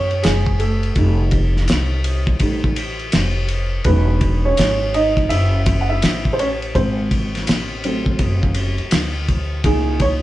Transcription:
0.00 0.21 F#2 medium
0.00 0.21 C#4 medium
0.00 0.25 C#5 medium
0.11 ride soft
0.23 0.93 F#1 medium
0.23 0.58 G#3 medium
0.23 0.61 G#4 medium
0.23 snare loud
0.23 hi-hat pedal medium
0.23 ride medium
0.46 kick medium
0.59 0.96 A3 medium
0.59 2.01 A4 medium
0.59 ride soft
0.83 ride soft
0.95 1.65 F1 medium
0.95 2.40 G3 medium
0.95 2.40 A3 soft
0.95 2.40 D#4 medium
0.95 kick medium
0.95 ride soft
1.31 kick medium
1.31 ride soft
1.57 snare soft
1.68 2.38 C2 medium
1.68 snare loud
1.68 hi-hat pedal medium
1.68 ride medium
2.04 ride medium
2.27 kick medium
2.40 3.10 A1 medium
2.40 2.74 G3 soft
2.40 2.74 A3 soft
2.40 2.74 D#4 medium
2.40 kick medium
2.40 ride medium
2.64 kick medium
2.76 ride medium
2.99 ride soft
3.12 3.83 F1 medium
3.12 snare loud
3.12 hi-hat pedal medium
3.12 ride medium
3.48 ride medium
3.84 4.54 E1 medium
3.84 4.90 F#3 medium
3.84 4.90 G#3 soft
3.84 4.42 B3 medium
3.84 4.46 C#4 soft
3.84 4.91 D#4 medium
3.84 4.41 B4 medium
3.84 kick medium
3.84 ride medium
4.21 kick medium
4.21 ride medium
4.45 4.92 C#4 medium
4.45 4.96 C#5 medium
4.57 5.27 G#1 medium
4.57 snare loud
4.57 hi-hat pedal medium
4.57 ride medium
4.94 5.29 D#4 medium
4.94 5.32 D#5 medium
4.94 ride medium
5.17 kick medium
5.17 ride soft
5.29 5.99 F#1 medium
5.29 5.78 E4 medium
5.29 5.82 E5 loud
5.29 ride medium
5.66 kick loud
5.66 ride medium
5.81 5.90 F#5 medium
5.89 6.32 E4 medium
5.89 6.35 E5 loud
6.02 6.72 A1 medium
6.02 snare loud
6.02 hi-hat pedal medium
6.02 ride medium
6.25 kick medium
6.33 6.39 C5 medium
6.39 6.49 C#4 medium
6.39 6.47 C#5 medium
6.39 ride medium
6.62 ride soft
6.75 7.44 G#1 loud
6.75 7.84 C4 medium
6.75 8.88 C5 medium
6.75 kick medium
6.75 ride medium
7.11 kick medium
7.11 ride medium
7.35 snare soft
7.35 ride soft
7.47 8.16 A1 medium
7.47 snare loud
7.47 hi-hat pedal medium
7.47 ride medium
7.84 9.61 F#3 medium
7.84 9.61 A3 medium
7.84 9.61 C4 medium
7.84 ride medium
8.06 kick medium
8.19 8.76 F#1 medium
8.19 kick medium
8.19 ride medium
8.43 kick medium
8.54 ride medium
8.78 muted upright bass stroke soft
8.78 ride soft
8.91 9.61 D2 medium
8.91 snare loud
8.91 hi-hat pedal medium
8.91 ride medium
9.28 kick medium
9.28 ride medium
9.64 10.22 C#2 loud
9.64 10.22 A#2 soft
9.64 10.22 E3 medium
9.64 10.22 D#4 medium
9.64 9.98 G#4 medium
9.64 kick medium
9.64 ride medium
10.00 10.06 C#5 loud
10.00 kick medium
10.00 ride medium

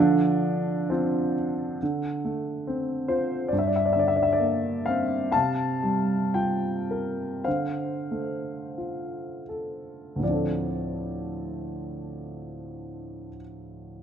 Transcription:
0.00 1.78 D3 medium
0.00 1.33 F3 medium
0.00 0.88 D4 medium
0.90 1.78 C4 soft
0.90 1.78 D4 soft
0.90 1.79 F4 soft
1.82 3.49 D3 soft
2.25 3.48 A3 soft
2.67 3.50 C4 soft
3.08 3.51 F4 soft
3.08 3.53 C5 medium
3.48 3.58 D5 soft
3.52 5.30 G2 soft
3.59 3.68 E5 soft
3.67 3.76 D5 soft
3.76 3.84 E5 soft
3.86 3.93 D5 soft
3.93 5.30 D3 soft
3.93 4.01 E5 medium
3.99 4.09 D5 medium
4.08 4.17 E5 medium
4.16 4.26 D5 soft
4.23 4.33 E5 medium
4.33 4.82 D5 medium
4.40 5.31 A#3 soft
4.86 5.33 C4 soft
4.86 5.30 F5 medium
5.31 7.41 F5 medium
5.31 6.37 A5 medium
5.36 7.43 C3 soft
5.83 7.42 G3 soft
6.34 7.43 F4 soft
6.34 7.49 G5 medium
6.91 7.45 A#4 soft
7.44 10.19 D3 soft
7.44 10.18 C5 soft
7.44 9.42 F5 medium
8.11 10.20 A3 soft
8.78 10.20 F4 soft
9.49 10.21 A4 soft
10.16 13.27 D2 soft
10.16 13.30 A2 soft
10.23 13.34 F3 soft
10.23 13.37 C4 soft
10.23 13.34 D5 soft
10.30 13.41 D4 soft
10.30 13.43 A4 soft

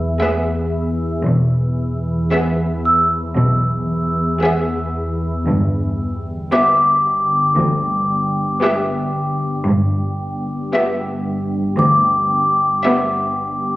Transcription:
0.00 1.26 E2 medium
0.21 1.02 B3 soft
0.21 1.01 G#4 soft
0.21 1.02 E5 soft
1.26 2.12 E1 soft
1.26 2.12 E2 soft
1.26 5.44 E2 medium
2.32 3.12 B3 soft
2.32 3.12 G#4 soft
2.32 3.12 E5 soft
2.85 5.97 E6 soft
3.37 4.23 B1 soft
3.37 4.22 B2 soft
4.43 5.23 B3 soft
4.43 5.23 G#4 soft
4.43 5.23 E5 soft
5.47 9.67 G1 medium
5.47 6.33 G1 soft
5.47 6.33 G2 soft
6.52 7.33 B3 soft
6.52 7.33 G4 soft
6.52 7.33 E5 soft
6.52 9.64 D6 soft
7.58 8.43 D2 medium
7.58 8.44 D2 soft
8.63 9.43 B3 soft
8.63 9.43 G4 soft
8.63 9.44 E5 soft
9.68 13.76 G1 medium
9.68 10.54 G1 medium
9.68 10.54 G2 medium
10.74 11.54 B3 soft
10.74 11.54 G4 soft
10.74 11.55 E5 soft
11.79 12.65 D2 medium
11.79 13.76 D6 soft
12.84 13.65 B3 soft
12.84 13.65 G4 soft
12.84 13.65 E5 soft

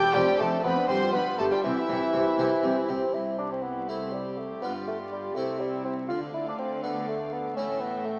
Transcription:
0.00 0.13 E2 medium
0.00 0.12 C4 medium
0.00 0.12 E4 medium
0.00 0.15 E4 medium
0.00 0.12 G4 medium
0.00 0.16 G4 loud
0.00 0.15 G5 loud
0.00 0.15 G6 loud
0.14 0.24 F1 loud
0.14 0.23 F2 loud
0.14 0.37 F2 medium
0.14 0.39 G3 loud
0.14 0.85 C4 medium
0.14 0.27 C4 medium
0.14 0.86 D4 medium
0.14 0.86 F4 medium
0.14 0.40 G4 loud
0.14 0.40 G5 loud
0.28 0.40 D4 medium
0.40 0.48 F1 medium
0.40 0.48 F2 medium
0.40 0.62 F2 medium
0.40 0.64 A3 medium
0.40 0.52 C4 medium
0.40 0.65 A4 medium
0.40 0.65 A5 loud
0.52 0.65 D4 medium
0.64 0.72 F1 medium
0.64 0.72 F2 medium
0.64 0.87 F2 medium
0.64 0.88 B3 medium
0.64 0.76 C4 medium
0.64 0.89 B4 loud
0.64 0.89 B5 loud
0.77 0.89 D4 medium
0.88 0.97 G1 medium
0.88 0.97 G2 medium
0.88 1.12 G2 medium
0.88 1.12 C4 loud
0.88 1.60 D4 medium
0.88 1.61 F4 medium
0.88 1.01 G4 medium
0.88 1.14 C5 loud
0.88 1.14 C6 loud
1.02 1.14 F4 medium
1.13 1.22 G1 medium
1.13 1.22 G2 medium
1.13 1.37 G2 medium
1.13 1.40 B3 medium
1.13 1.26 G4 medium
1.13 1.39 B4 loud
1.13 1.39 B5 loud
1.27 1.39 F4 medium
1.38 1.47 G1 medium
1.38 1.47 G2 medium
1.38 1.61 G2 medium
1.38 1.51 A3 medium
1.38 1.51 G4 medium
1.38 1.44 A4 medium
1.38 1.44 A5 loud
1.51 1.63 G3 medium
1.51 1.64 F4 medium
1.51 1.56 G4 medium
1.51 1.64 G5 medium
1.64 1.72 C2 medium
1.64 1.72 C3 medium
1.64 1.86 C3 medium
1.64 2.87 E3 loud
1.64 2.87 E4 medium
1.64 1.76 G4 medium
1.64 2.87 E5 loud
1.76 1.89 E4 medium
1.89 1.97 C2 medium
1.89 2.11 C3 medium
1.89 1.97 C3 medium
1.89 2.02 G4 medium
2.01 2.14 E4 medium
2.13 2.22 C2 medium
2.13 2.36 C3 medium
2.13 2.22 C3 medium
2.13 2.25 G4 medium
2.26 2.39 E4 medium
2.38 2.46 C2 medium
2.38 2.61 C3 medium
2.38 2.47 C3 medium
2.38 2.93 C4 medium
2.38 2.94 E4 medium
2.38 2.51 G4 medium
2.51 2.64 E4 medium
2.64 2.72 C2 medium
2.64 2.86 C3 medium
2.64 2.72 C3 medium
2.64 2.76 G4 medium
2.76 2.89 E4 medium
2.89 2.97 C2 medium
2.89 3.11 C3 medium
2.89 2.97 C3 medium
2.89 3.15 C4 medium
2.89 3.02 G4 medium
3.02 3.13 E4 medium
3.14 4.58 C2 soft
3.14 4.59 C2 soft
3.14 3.38 E4 medium
3.14 4.59 E4 soft
3.14 6.06 G4 soft
3.14 4.58 C5 soft
3.38 3.51 D4 medium
3.52 3.64 C4 medium
3.63 3.90 B3 medium
3.88 4.14 A3 medium
3.88 4.42 C4 soft
3.88 4.43 E4 soft
4.13 4.39 G3 soft
4.38 4.62 A3 medium
4.62 5.34 G1 soft
4.62 5.32 G2 soft
4.62 5.34 G2 soft
4.62 4.73 B3 medium
4.62 5.32 D4 soft
4.62 5.35 F4 soft
4.62 5.33 F4 soft
4.62 5.36 D5 soft
4.88 4.99 A3 medium
5.12 5.37 G3 medium
5.35 6.08 C2 soft
5.35 6.08 C3 soft
5.35 6.06 C3 soft
5.35 5.61 A3 medium
5.35 6.06 C4 soft
5.35 6.10 E4 soft
5.35 6.06 E4 soft
5.35 6.10 E5 soft
5.60 5.84 G3 medium
5.85 5.96 C4 medium
6.09 7.57 D2 medium
6.09 7.57 D3 medium
6.09 7.53 D3 soft
6.09 6.20 F4 medium
6.09 8.19 A4 soft
6.09 7.54 D5 soft
6.09 7.54 F5 medium
6.34 6.46 E4 medium
6.48 6.58 D4 medium
6.59 6.82 C4 medium
6.83 7.36 A3 soft
6.83 7.10 B3 medium
6.83 7.37 D4 soft
7.08 7.34 A3 medium
7.33 7.56 B3 medium
7.56 8.19 A1 medium
7.56 8.19 A2 medium
7.56 8.19 A2 soft
7.56 8.19 A3 soft
7.56 7.82 C#4 medium
7.56 8.19 E4 soft
7.56 8.19 E5 soft
7.56 8.19 G5 soft
7.80 8.06 B3 medium
8.05 8.19 A3 medium

